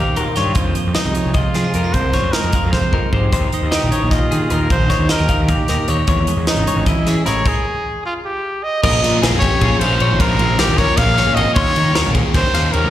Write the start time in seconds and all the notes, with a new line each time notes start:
Already playing: A#2 D#3 A#3 C4 F5
0.00 G4
0.16 D#2 F4 A#4, closed hi-hat
0.36 G2 F4 C#5, snare, closed hi-hat
0.55 F2 C5, kick, closed hi-hat
0.75 F3, closed hi-hat
0.87 F2
0.95 G#3 D#4 D#5, snare, closed hi-hat
1.05 C2
1.15 F3 C#5, closed hi-hat
1.25 C2
1.34 C3 F4 D#5, kick, closed hi-hat
1.54 F3 C4 G#4, snare, closed hi-hat
1.64 D#4
1.74 F2 C4 A#4, closed hi-hat
1.84 D#4
1.94 C2 F2 C5, kick, closed hi-hat
2.13 F3 C#5, kick, snare, closed hi-hat
2.23 F2
2.32 G#3 A#4 D#5, snare, closed hi-hat
2.44 F2
2.53 F3 F5, kick, closed hi-hat
2.64 F2
2.72 C3 C5, kick, snare
2.93 F2 D#4 A#4, kick
3.13 G#2 G4 C5, kick
3.32 D#2 D#3 C5, kick, closed hi-hat
3.52 D#4, closed hi-hat
3.62 D#2
3.71 D#4 G4 D#5, snare, closed hi-hat
3.83 A#1
3.92 D#4 C#5, closed hi-hat
4.02 A#1
4.11 A#2 F4 D#5, kick, snare, closed hi-hat
4.31 D#3 D#4 G#4, closed hi-hat
4.50 D#2 D#4 A#4, closed hi-hat
4.70 A#1 D#3 C5, kick, closed hi-hat
4.90 D#4 C#5, kick, snare, closed hi-hat
5.00 D#2
5.09 G4 A#4 D#5, snare, closed hi-hat
5.20 D#2
5.29 D#4 F5, kick, closed hi-hat
5.40 D#2
5.48 A#2 G4, kick, closed hi-hat
5.68 D#2 D#4 A#4, snare, closed hi-hat
5.88 D#2 D#4 C#5, closed hi-hat
6.07 E2 E3 C#5, kick, closed hi-hat
6.27 G#3, closed hi-hat
6.37 E2
6.47 C#4 D#4 D#5, snare, closed hi-hat
6.57 G#1
6.67 G#3 C#5, closed hi-hat
6.76 G#1
6.86 E3 E4 D#5, kick, closed hi-hat
7.06 E3 C#4 G#4, snare, closed hi-hat
7.26 A1 G#4 A#4 C#5, snare, closed hi-hat
7.46 G#4, kick, crash
8.06 F4
8.25 G4
8.64 D#5
8.83 A#1 A#2 F3 A#3 C#4 F4 A#4 D#5, kick, crash
9.02 A#2 A#3 C#4 F4 A#4, snare, ride
9.22 A#1 A#2 F3 A#3 C#4 F4 G#4 A#4, snare, ride
9.33 F2
9.39 F4 G4 A#4 C#5, kick, ride
9.44 A#3 C#4
9.61 A#1 A#3 C#4 F4 G#4 A#4, kick, ride
9.79 A#1 F3 A#3 C#4 F4 A#4 C5 F5, ride
9.84 A#2
10.00 A#1 A#3 C#4 F4 A#4 C#5, ride
10.11 G#1
10.20 A#1 A#2 F3 A#3 C#4 F4 A#4 C5, kick, ride
10.39 A#1 A#3 C#4 F4 A#4, ride
10.58 A#1 A#2 F3 A#3 C#4 F4 G4 A#4, snare, ride
10.69 D#2
10.78 A#3 C#4 F4 A#4 C#5, kick, snare, ride
10.97 A#1 A#3 C#4 F4 A#4 F5, kick, snare, ride
11.17 A#2 F3 A#3 C#4 F4 A#4 C#5, snare, ride
11.27 A#2
11.35 G#1 A#3 C#4 F4 D#5, ride
11.39 A#4
11.54 D#2 D#3 A#3 C#4 G4 A#4 C#5 C6, kick, ride
11.76 D#3 C#4 G4 A#4, ride
11.94 D#2 D#3 A#3 C#4 G4 A#4, snare, ride
12.07 A#1
12.15 C#4 G4 G#4 A#4, kick, ride
12.34 D#2 A#3 C#4 G4 A#4 C5, kick, snare, ride
12.54 D#2 D#3 A#3 C#4 G4 A#4 F5, snare, ride
12.72 D#2 A#3 C#4 G4 A#4 C#5, ride
12.84 C#2